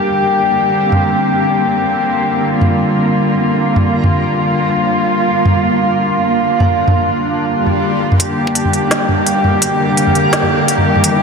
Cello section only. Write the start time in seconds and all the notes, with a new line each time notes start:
Already playing: D3 G3 A#3 G4
2.52 F4
8.20 D3 G3 A#3 G4